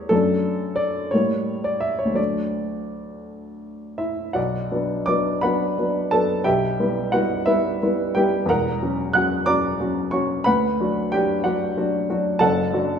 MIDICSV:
0, 0, Header, 1, 2, 480
1, 0, Start_track
1, 0, Key_signature, 2, "major"
1, 0, Tempo, 686499
1, 79, Time_signature, 6, 3, 24, 8
1, 1522, Tempo, 720288
1, 2976, Key_signature, 2, "minor"
1, 3922, Tempo, 677201
1, 5842, Tempo, 654308
1, 9147, End_track
2, 0, Start_track
2, 0, Title_t, "Grand piano"
2, 0, Program_c, 0, 0
2, 0, Control_c, 0, 64, 127
2, 0, Note_on_c, 0, 40, 67
2, 0, Note_on_c, 0, 55, 52
2, 0, Note_on_c, 0, 57, 53
2, 0, Note_on_c, 0, 64, 49
2, 0, Note_on_c, 0, 73, 94
2, 64, Note_on_c, 0, 69, 96
2, 74, Note_on_c, 0, 54, 52
2, 76, Note_on_c, 0, 42, 70
2, 78, Note_off_c, 0, 57, 0
2, 78, Note_on_c, 0, 57, 50
2, 86, Note_on_c, 0, 62, 54
2, 89, Control_c, 0, 64, 0
2, 92, Note_off_c, 0, 55, 0
2, 93, Note_off_c, 0, 40, 0
2, 93, Note_off_c, 0, 73, 0
2, 96, Note_off_c, 0, 64, 0
2, 220, Control_c, 0, 64, 127
2, 529, Note_on_c, 0, 74, 95
2, 538, Note_off_c, 0, 69, 0
2, 754, Note_off_c, 0, 54, 0
2, 756, Note_off_c, 0, 57, 0
2, 760, Note_off_c, 0, 62, 0
2, 761, Note_off_c, 0, 42, 0
2, 776, Note_off_c, 0, 74, 0
2, 776, Note_on_c, 0, 73, 89
2, 791, Note_on_c, 0, 45, 64
2, 791, Note_on_c, 0, 55, 49
2, 793, Note_on_c, 0, 58, 50
2, 797, Control_c, 0, 64, 0
2, 802, Note_on_c, 0, 64, 47
2, 892, Control_c, 0, 64, 127
2, 1147, Note_off_c, 0, 73, 0
2, 1148, Note_on_c, 0, 74, 80
2, 1262, Note_on_c, 0, 76, 88
2, 1272, Note_off_c, 0, 74, 0
2, 1389, Note_on_c, 0, 73, 77
2, 1391, Note_off_c, 0, 76, 0
2, 1435, Note_on_c, 0, 38, 57
2, 1492, Note_on_c, 0, 54, 41
2, 1497, Note_off_c, 0, 55, 0
2, 1497, Note_on_c, 0, 57, 43
2, 1498, Note_off_c, 0, 58, 0
2, 1502, Note_off_c, 0, 64, 0
2, 1503, Note_off_c, 0, 45, 0
2, 1505, Note_on_c, 0, 62, 43
2, 1507, Note_on_c, 0, 74, 79
2, 1517, Note_off_c, 0, 73, 0
2, 1536, Control_c, 0, 64, 0
2, 1641, Control_c, 0, 64, 127
2, 2723, Note_on_c, 0, 76, 76
2, 2729, Note_off_c, 0, 74, 0
2, 2729, Note_on_c, 0, 64, 57
2, 2908, Note_off_c, 0, 38, 0
2, 2935, Note_off_c, 0, 54, 0
2, 2938, Note_off_c, 0, 57, 0
2, 2942, Note_off_c, 0, 62, 0
2, 2956, Note_off_c, 0, 64, 0
2, 2959, Note_on_c, 0, 78, 77
2, 2967, Note_on_c, 0, 66, 60
2, 2969, Note_on_c, 0, 74, 63
2, 2970, Note_off_c, 0, 76, 0
2, 2972, Note_on_c, 0, 35, 69
2, 2990, Control_c, 0, 64, 0
2, 3093, Control_c, 0, 64, 127
2, 3205, Note_off_c, 0, 35, 0
2, 3213, Note_on_c, 0, 54, 53
2, 3217, Note_on_c, 0, 59, 52
2, 3218, Note_on_c, 0, 62, 55
2, 3422, Note_off_c, 0, 66, 0
2, 3423, Note_off_c, 0, 74, 0
2, 3429, Note_off_c, 0, 54, 0
2, 3431, Note_off_c, 0, 59, 0
2, 3431, Note_off_c, 0, 62, 0
2, 3442, Note_on_c, 0, 86, 94
2, 3445, Note_off_c, 0, 78, 0
2, 3452, Note_on_c, 0, 74, 72
2, 3454, Note_on_c, 0, 54, 53
2, 3460, Note_on_c, 0, 62, 57
2, 3461, Note_on_c, 0, 59, 52
2, 3666, Note_off_c, 0, 54, 0
2, 3669, Note_off_c, 0, 62, 0
2, 3670, Note_off_c, 0, 59, 0
2, 3672, Note_off_c, 0, 74, 0
2, 3679, Note_on_c, 0, 83, 96
2, 3683, Note_off_c, 0, 86, 0
2, 3689, Note_on_c, 0, 78, 70
2, 3690, Note_on_c, 0, 71, 76
2, 3696, Note_on_c, 0, 54, 51
2, 3698, Note_on_c, 0, 59, 56
2, 3699, Note_on_c, 0, 62, 57
2, 3901, Note_off_c, 0, 54, 0
2, 3902, Note_off_c, 0, 59, 0
2, 3903, Note_off_c, 0, 62, 0
2, 3926, Note_on_c, 0, 54, 50
2, 3930, Note_on_c, 0, 59, 52
2, 3930, Note_on_c, 0, 62, 54
2, 4135, Note_off_c, 0, 71, 0
2, 4135, Note_off_c, 0, 78, 0
2, 4142, Note_off_c, 0, 54, 0
2, 4144, Note_off_c, 0, 59, 0
2, 4144, Note_off_c, 0, 62, 0
2, 4158, Note_off_c, 0, 83, 0
2, 4158, Note_on_c, 0, 81, 97
2, 4166, Note_on_c, 0, 69, 74
2, 4172, Note_on_c, 0, 62, 59
2, 4173, Note_on_c, 0, 54, 53
2, 4175, Note_on_c, 0, 59, 54
2, 4383, Note_off_c, 0, 62, 0
2, 4384, Note_off_c, 0, 54, 0
2, 4385, Note_off_c, 0, 59, 0
2, 4387, Note_off_c, 0, 69, 0
2, 4393, Note_on_c, 0, 79, 96
2, 4398, Note_on_c, 0, 76, 75
2, 4399, Note_on_c, 0, 67, 74
2, 4400, Note_off_c, 0, 81, 0
2, 4404, Note_on_c, 0, 35, 70
2, 4414, Control_c, 0, 64, 0
2, 4519, Control_c, 0, 64, 127
2, 4636, Note_off_c, 0, 35, 0
2, 4643, Note_on_c, 0, 55, 54
2, 4646, Note_on_c, 0, 59, 53
2, 4648, Note_on_c, 0, 64, 55
2, 4852, Note_off_c, 0, 67, 0
2, 4852, Note_off_c, 0, 76, 0
2, 4859, Note_off_c, 0, 55, 0
2, 4861, Note_off_c, 0, 59, 0
2, 4862, Note_off_c, 0, 64, 0
2, 4873, Note_on_c, 0, 78, 93
2, 4878, Note_off_c, 0, 79, 0
2, 4882, Note_on_c, 0, 66, 69
2, 4884, Note_on_c, 0, 55, 50
2, 4889, Note_on_c, 0, 59, 50
2, 4889, Note_on_c, 0, 64, 59
2, 5099, Note_off_c, 0, 55, 0
2, 5102, Note_off_c, 0, 59, 0
2, 5102, Note_off_c, 0, 64, 0
2, 5105, Note_off_c, 0, 66, 0
2, 5111, Note_on_c, 0, 76, 96
2, 5117, Note_off_c, 0, 78, 0
2, 5120, Note_on_c, 0, 71, 68
2, 5121, Note_on_c, 0, 64, 70
2, 5123, Note_on_c, 0, 59, 54
2, 5125, Note_on_c, 0, 55, 52
2, 5340, Note_off_c, 0, 55, 0
2, 5340, Note_off_c, 0, 59, 0
2, 5366, Note_off_c, 0, 64, 0
2, 5374, Note_on_c, 0, 55, 54
2, 5377, Note_on_c, 0, 64, 58
2, 5378, Note_on_c, 0, 59, 53
2, 5576, Note_off_c, 0, 71, 0
2, 5587, Note_off_c, 0, 55, 0
2, 5588, Note_off_c, 0, 64, 0
2, 5589, Note_off_c, 0, 59, 0
2, 5600, Note_off_c, 0, 76, 0
2, 5601, Note_on_c, 0, 79, 90
2, 5610, Note_on_c, 0, 67, 71
2, 5613, Note_on_c, 0, 55, 54
2, 5616, Note_on_c, 0, 59, 56
2, 5621, Note_on_c, 0, 64, 58
2, 5821, Note_on_c, 0, 40, 70
2, 5822, Note_off_c, 0, 55, 0
2, 5823, Note_off_c, 0, 59, 0
2, 5826, Note_off_c, 0, 64, 0
2, 5827, Note_off_c, 0, 67, 0
2, 5839, Note_off_c, 0, 79, 0
2, 5842, Note_on_c, 0, 82, 98
2, 5846, Note_on_c, 0, 70, 78
2, 5847, Note_on_c, 0, 28, 64
2, 5850, Note_on_c, 0, 78, 78
2, 5853, Control_c, 0, 64, 0
2, 5964, Control_c, 0, 64, 127
2, 6060, Note_off_c, 0, 40, 0
2, 6074, Note_off_c, 0, 28, 0
2, 6088, Note_on_c, 0, 54, 52
2, 6089, Note_on_c, 0, 66, 54
2, 6091, Note_on_c, 0, 61, 53
2, 6287, Note_off_c, 0, 70, 0
2, 6289, Note_off_c, 0, 78, 0
2, 6296, Note_off_c, 0, 54, 0
2, 6297, Note_off_c, 0, 61, 0
2, 6297, Note_off_c, 0, 66, 0
2, 6314, Note_off_c, 0, 82, 0
2, 6317, Note_on_c, 0, 90, 98
2, 6329, Note_on_c, 0, 78, 75
2, 6332, Note_on_c, 0, 54, 56
2, 6333, Note_on_c, 0, 61, 51
2, 6338, Note_on_c, 0, 66, 56
2, 6539, Note_off_c, 0, 54, 0
2, 6540, Note_off_c, 0, 61, 0
2, 6543, Note_off_c, 0, 66, 0
2, 6545, Note_off_c, 0, 78, 0
2, 6555, Note_off_c, 0, 90, 0
2, 6555, Note_on_c, 0, 86, 104
2, 6561, Note_on_c, 0, 74, 83
2, 6561, Note_on_c, 0, 82, 78
2, 6566, Note_on_c, 0, 54, 55
2, 6570, Note_on_c, 0, 61, 52
2, 6570, Note_on_c, 0, 66, 61
2, 6778, Note_off_c, 0, 54, 0
2, 6781, Note_off_c, 0, 61, 0
2, 6781, Note_off_c, 0, 66, 0
2, 6808, Note_on_c, 0, 54, 55
2, 6809, Note_on_c, 0, 61, 55
2, 6814, Note_on_c, 0, 66, 59
2, 7015, Note_off_c, 0, 74, 0
2, 7015, Note_off_c, 0, 82, 0
2, 7023, Note_off_c, 0, 54, 0
2, 7023, Note_off_c, 0, 61, 0
2, 7026, Note_off_c, 0, 66, 0
2, 7033, Note_on_c, 0, 85, 92
2, 7042, Note_off_c, 0, 86, 0
2, 7045, Note_on_c, 0, 54, 56
2, 7045, Note_on_c, 0, 73, 70
2, 7048, Note_on_c, 0, 61, 57
2, 7051, Note_on_c, 0, 66, 63
2, 7264, Note_off_c, 0, 54, 0
2, 7266, Note_off_c, 0, 61, 0
2, 7268, Note_off_c, 0, 66, 0
2, 7272, Note_off_c, 0, 73, 0
2, 7277, Note_on_c, 0, 83, 111
2, 7283, Note_off_c, 0, 85, 0
2, 7288, Note_on_c, 0, 78, 78
2, 7290, Note_on_c, 0, 71, 79
2, 7296, Note_on_c, 0, 38, 74
2, 7300, Control_c, 0, 64, 0
2, 7428, Control_c, 0, 64, 127
2, 7528, Note_off_c, 0, 38, 0
2, 7543, Note_on_c, 0, 62, 52
2, 7544, Note_on_c, 0, 54, 57
2, 7548, Note_on_c, 0, 66, 60
2, 7743, Note_off_c, 0, 78, 0
2, 7744, Note_off_c, 0, 71, 0
2, 7754, Note_off_c, 0, 62, 0
2, 7755, Note_off_c, 0, 54, 0
2, 7757, Note_off_c, 0, 66, 0
2, 7766, Note_off_c, 0, 83, 0
2, 7772, Note_on_c, 0, 79, 94
2, 7781, Note_on_c, 0, 67, 75
2, 7786, Note_on_c, 0, 54, 57
2, 7789, Note_on_c, 0, 62, 56
2, 7795, Note_on_c, 0, 66, 64
2, 7995, Note_off_c, 0, 54, 0
2, 7997, Note_off_c, 0, 62, 0
2, 8000, Note_off_c, 0, 66, 0
2, 8000, Note_off_c, 0, 67, 0
2, 8006, Note_on_c, 0, 78, 79
2, 8012, Note_off_c, 0, 79, 0
2, 8015, Note_on_c, 0, 74, 58
2, 8017, Note_on_c, 0, 66, 58
2, 8019, Note_on_c, 0, 54, 58
2, 8021, Note_on_c, 0, 62, 58
2, 8229, Note_off_c, 0, 54, 0
2, 8230, Note_off_c, 0, 62, 0
2, 8245, Note_off_c, 0, 66, 0
2, 8249, Note_on_c, 0, 54, 56
2, 8254, Note_on_c, 0, 62, 56
2, 8256, Note_on_c, 0, 66, 64
2, 8458, Note_off_c, 0, 74, 0
2, 8463, Note_off_c, 0, 54, 0
2, 8465, Note_off_c, 0, 62, 0
2, 8466, Note_off_c, 0, 66, 0
2, 8483, Note_off_c, 0, 78, 0
2, 8491, Note_on_c, 0, 62, 64
2, 8492, Note_on_c, 0, 54, 59
2, 8495, Note_on_c, 0, 66, 66
2, 8703, Note_off_c, 0, 54, 0
2, 8703, Note_off_c, 0, 62, 0
2, 8705, Note_off_c, 0, 66, 0
2, 8707, Note_on_c, 0, 81, 104
2, 8711, Note_on_c, 0, 30, 76
2, 8715, Note_on_c, 0, 69, 84
2, 8718, Note_on_c, 0, 42, 77
2, 8718, Note_on_c, 0, 78, 86
2, 8735, Control_c, 0, 64, 0
2, 8866, Control_c, 0, 64, 127
2, 8948, Note_off_c, 0, 30, 0
2, 8952, Note_off_c, 0, 42, 0
2, 8955, Note_on_c, 0, 54, 60
2, 8959, Note_on_c, 0, 62, 59
2, 8961, Note_on_c, 0, 66, 64
2, 9147, Note_off_c, 0, 54, 0
2, 9147, Note_off_c, 0, 62, 0
2, 9147, Note_off_c, 0, 66, 0
2, 9147, Note_off_c, 0, 69, 0
2, 9147, Note_off_c, 0, 78, 0
2, 9147, Note_off_c, 0, 81, 0
2, 9147, End_track
0, 0, End_of_file